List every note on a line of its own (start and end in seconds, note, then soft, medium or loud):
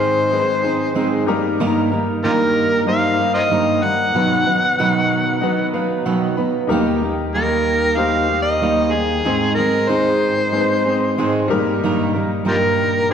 0.00 0.32 G#2 medium
0.00 1.25 G#2 medium
0.00 0.95 D#3 medium
0.00 1.25 D#3 medium
0.00 0.30 G#3 medium
0.00 0.31 C4 medium
0.00 1.25 C4 medium
0.00 0.31 D#4 medium
0.00 0.32 D#4 medium
0.00 0.32 G#4 medium
0.00 0.33 G#4 medium
0.00 1.25 G#4 medium
0.00 0.40 C5 medium
0.00 1.25 C5 medium
0.00 1.25 D#5 medium
0.31 0.63 G#3 medium
0.31 0.64 C4 medium
0.31 1.11 D#4 medium
0.31 0.63 D#4 medium
0.31 1.11 G#4 medium
0.31 0.63 G#4 medium
0.31 0.39 B4 medium
0.40 1.15 C5 medium
0.64 0.94 G#3 medium
0.64 0.95 C4 medium
0.64 0.95 D#4 medium
0.64 0.95 G#4 medium
0.95 1.27 G#2 medium
0.95 1.27 D#3 medium
0.95 1.27 G#3 medium
0.95 1.28 C4 medium
0.95 1.27 D#4 medium
0.95 1.27 G#4 loud
1.26 4.12 G2 medium
1.26 2.29 G3 medium
1.26 4.12 G3 medium
1.26 1.59 G3 medium
1.26 4.12 A#3 medium
1.26 1.59 A#3 medium
1.26 2.29 D#4 medium
1.26 1.60 D#4 medium
1.26 6.67 D#4 medium
1.26 2.30 G4 medium
1.26 1.59 A#4 medium
1.26 4.12 A#4 medium
1.26 2.30 A#4 loud
1.59 1.91 G2 medium
1.59 1.92 D#3 medium
1.59 1.92 G3 medium
1.59 1.92 A#3 loud
1.59 1.91 D#4 loud
1.59 1.90 A#4 loud
1.92 2.23 G3 medium
1.92 2.23 A#3 medium
1.92 2.24 D#4 medium
1.92 2.23 A#4 medium
2.24 2.87 G2 medium
2.24 3.51 D#3 medium
2.24 2.86 G3 medium
2.24 2.87 A#3 medium
2.24 2.89 D#4 medium
2.24 2.31 F4 medium
2.24 2.32 G4 medium
2.24 2.83 A#4 loud
2.24 2.88 A#4 medium
2.86 3.66 G3 medium
2.86 3.19 G3 medium
2.86 3.19 A#3 medium
2.86 3.66 D#4 medium
2.86 3.19 D#4 medium
2.86 3.67 G4 medium
2.86 3.18 A#4 medium
2.86 3.67 C5 medium
2.86 3.32 F5 loud
3.20 3.50 G3 medium
3.20 3.51 A#3 soft
3.20 3.51 D#4 medium
3.20 3.51 A#4 medium
3.34 3.41 A#4 medium
3.34 3.43 C5 medium
3.34 3.85 D#5 loud
3.51 3.83 G2 medium
3.51 3.83 D#3 medium
3.51 3.83 G3 medium
3.51 3.83 A#3 medium
3.51 3.82 D#4 medium
3.51 3.82 A#4 medium
3.83 4.14 G3 soft
3.83 4.15 A#3 soft
3.83 4.14 D#4 medium
3.83 4.15 A#4 medium
3.83 5.75 F#5 loud
4.13 6.67 B2 medium
4.13 4.46 B2 medium
4.13 4.46 D#3 medium
4.13 6.67 F#3 medium
4.13 4.47 F#3 medium
4.13 4.47 B3 medium
4.13 4.94 D#4 medium
4.13 4.46 D#4 medium
4.13 6.67 F#4 medium
4.13 4.94 F#4 medium
4.13 6.67 B4 medium
4.13 4.95 B4 medium
4.13 4.45 B4 loud
4.46 4.78 F#3 soft
4.46 4.79 B3 medium
4.46 4.79 D#4 medium
4.46 4.78 B4 medium
4.78 5.42 B2 medium
4.78 6.06 D#3 medium
4.78 5.40 F#3 loud
4.78 5.41 B3 loud
4.78 5.42 D#4 loud
4.78 5.43 B4 loud
5.41 5.74 F#3 medium
5.41 5.74 B3 medium
5.41 6.21 D#4 medium
5.41 5.74 D#4 medium
5.41 6.22 F#4 medium
5.41 6.22 B4 loud
5.41 5.72 B4 medium
5.74 6.05 F#3 medium
5.74 6.05 B3 medium
5.74 6.06 D#4 medium
5.74 6.06 B4 medium
5.74 6.04 F5 medium
6.05 6.38 B2 medium
6.05 6.38 D#3 medium
6.05 6.38 F#3 loud
6.05 6.37 B3 medium
6.05 6.37 D#4 medium
6.05 6.36 B4 medium
6.05 6.35 F#5 medium
6.37 6.70 F#3 soft
6.37 6.70 B3 medium
6.37 6.70 D#4 medium
6.37 6.70 B4 medium
6.37 6.67 B5 medium
6.67 9.22 D#2 medium
6.67 9.22 D#3 medium
6.67 7.02 D#3 medium
6.67 7.02 G3 medium
6.67 9.23 A#3 medium
6.67 7.03 A#3 loud
6.67 7.48 D#4 medium
6.67 7.02 D#4 loud
6.67 7.49 G4 medium
6.67 9.22 A#4 medium
6.67 7.49 A#4 loud
6.67 9.22 G5 medium
6.72 7.01 G4 loud
7.02 7.34 A#3 medium
7.02 7.35 D#4 medium
7.02 7.34 G4 medium
7.34 8.61 D#3 medium
7.34 7.97 G3 medium
7.34 7.97 A#3 medium
7.34 7.99 D#4 loud
7.34 7.99 G4 medium
7.34 7.99 A#4 loud
7.96 8.30 G3 medium
7.96 8.30 A#3 medium
7.96 8.77 D#4 medium
7.96 8.30 D#4 medium
7.96 8.77 G4 medium
7.96 8.28 G4 medium
7.96 8.77 C5 medium
7.96 8.42 F5 loud
8.30 8.61 A#3 soft
8.30 8.62 D#4 medium
8.30 8.61 G4 medium
8.42 8.94 D#5 loud
8.61 8.93 D#3 medium
8.61 8.94 G3 medium
8.61 8.94 A#3 medium
8.61 8.93 D#4 medium
8.61 8.94 G4 medium
8.93 9.25 A#3 soft
8.93 9.24 D#4 soft
8.93 9.54 G#4 loud
9.24 9.57 G#2 medium
9.24 11.47 G#2 medium
9.24 9.57 D#3 medium
9.24 9.57 G#3 medium
9.24 11.48 G#3 medium
9.24 9.57 C4 medium
9.24 11.47 C4 medium
9.24 9.57 D#4 medium
9.24 10.05 D#4 medium
9.24 13.13 D#4 medium
9.24 9.56 G#4 medium
9.24 10.05 G#4 medium
9.24 10.06 C5 medium
9.24 11.47 D#5 medium
9.54 9.88 D#4 medium
9.54 9.89 G#4 medium
9.54 9.90 A#4 medium
9.58 9.88 G#3 medium
9.58 9.89 C4 medium
9.88 10.53 G#2 medium
9.88 11.18 D#3 medium
9.88 10.51 G#3 medium
9.88 10.52 C4 medium
9.88 10.54 D#4 medium
9.88 10.54 G#4 medium
9.88 11.49 C5 loud
10.52 10.85 G#3 medium
10.52 10.85 C4 medium
10.52 11.32 D#4 medium
10.52 10.85 D#4 medium
10.52 11.33 G#4 medium
10.52 10.84 G#4 medium
10.52 10.60 B4 medium
10.61 11.37 C5 medium
10.85 11.17 G#3 medium
10.85 11.17 C4 medium
10.85 11.17 D#4 medium
10.85 11.17 G#4 medium
11.18 11.49 G#2 loud
11.18 11.50 D#3 medium
11.18 11.50 G#3 loud
11.18 11.50 C4 loud
11.18 11.50 D#4 medium
11.18 11.50 G#4 medium
11.48 13.13 G2 medium
11.48 13.13 A#2 medium
11.48 12.51 G3 loud
11.48 13.13 G3 medium
11.48 11.82 A#3 medium
11.48 12.51 D#4 medium
11.48 11.82 D#4 medium
11.48 12.52 G4 medium
11.48 11.81 A#4 medium
11.48 12.52 A#4 loud
11.48 13.13 A#5 medium
11.52 11.83 G3 medium
11.83 12.14 G2 medium
11.83 12.14 D#3 loud
11.83 12.14 G3 medium
11.83 12.14 A#3 loud
11.83 12.14 D#4 loud
11.83 12.13 A#4 loud
12.14 12.44 G3 medium
12.14 12.44 A#3 medium
12.14 12.45 D#4 medium
12.14 12.45 A#4 medium
12.45 13.08 G2 medium
12.45 13.13 D#3 medium
12.45 13.08 G3 medium
12.45 13.09 A#3 medium
12.45 13.10 D#4 medium
12.45 12.56 F4 medium
12.45 12.57 G4 medium
12.45 13.09 A#4 medium
12.45 13.06 A#4 medium
13.09 13.13 G3 medium
13.09 13.13 A#3 medium
13.09 13.13 D#4 medium
13.09 13.13 G4 medium
13.09 13.13 C5 medium